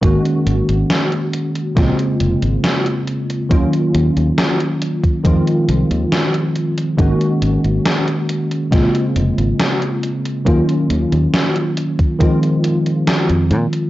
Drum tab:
HH |xxxxxxxxxxxxxxxx|xxxxxxxxxxxxxxxx|xxxxxxxxxxxxxxxx|xxxxxxxxxxxxxxxx|
SD |----o---o---o---|----o-------o---|----o---o---o---|----o-------o---|
BD |o-------o-------|o------oo-------|o-------o-------|o------oo-------|